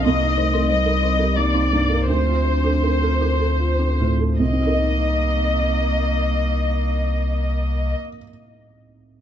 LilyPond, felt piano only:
\new Staff \with { instrumentName = "Felt piano" } { \time 3/4 \key c \dorian \tempo 4 = 74 c,16 ees'16 c''16 bes'16 c''16 bes'16 c''16 bes'16 ees'16 c'16 g,16 bes'16 | d,16 f'16 c''16 a'16 bes'16 a'16 bes'16 a'16 f'16 c'16 a,16 a'16 | <c, c c' ees' bes' ees''>2.~ | <c, c c' ees' bes' ees''>2. | }